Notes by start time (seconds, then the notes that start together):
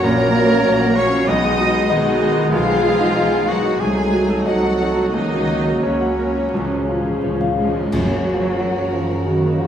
Already playing: A#2 F#3 C#4 F#4
0.02 A#1 F#3 A#3 C#4 A#4 C#5 A#5
0.19 A#3
0.34 F#3 C#4 F#4
0.50 A#4
0.65 A#1 C#5
0.81 F#5
0.95 F#3 C#4 A#4 C#5 F5 C#6
1.12 F#4
1.27 B1 B2 G#3 B3 D#4 D#5 F#5 D#6
1.44 G#3
1.59 G#3 B3 F#4
1.74 G#4
1.89 B1 D#3 D#4 F#4 D#5
2.06 F#5
2.21 G#3 B3 G#4
2.37 F#4
2.52 B1 F3 G#3 D#4 F4 G#4 F5
2.68 G#3
2.84 G#3 D#4 G#4
3.00 D#4
3.16 B1 D#5
3.32 G#5
3.47 F#3 G#3 D#4 F#4 G#4 A#4 F#5
3.64 D#4
3.79 C2 C3 F#3 G#3 A3 D#4 G#4 C5 G#5
3.97 A3
4.12 F#3 D#4 F#4
4.30 A4
4.45 C2 F#3 F#4 A4 D#5 F#5
4.63 F#5
4.78 F#3 D#4 A4
4.95 F#4
5.12 C#2 C#3 D#3 F#3 A#3 D#4 F#4 D#5
5.31 A#3
5.48 F#3 A#3 F#4
5.66 A#4
5.82 C#2 C#3 C#4 F#4 C#5
6.01 F#5
6.18 F#3 A#3 A#4
6.36 F#4
6.52 C#2 C#3 F3 G#3 C#4
6.61 C#3
6.72 G#3
6.77 C#3
6.84 C#3 F3
6.88 C#4 F4
7.00 C#3
7.07 C#3 G#4
7.22 C#2 C#3 F3 C#5
7.32 C#3
7.39 C#3 F5
7.47 C#3
7.55 C#3 F3 G#3 C#4 G#4
7.64 C#3
7.72 C#3 F4
7.81 C#3
7.92 F#2 C#3 F#3 F#4 A#4 C#5 A#5, concert bass drum, crash
8.10 A#3
8.27 F#4
8.43 C#5
8.59 F#5
8.76 C#5
8.93 F3 F#4
9.10 C#3 C#4
9.25 C#3 D#3 F#4
9.43 A#3
9.58 F3 F#4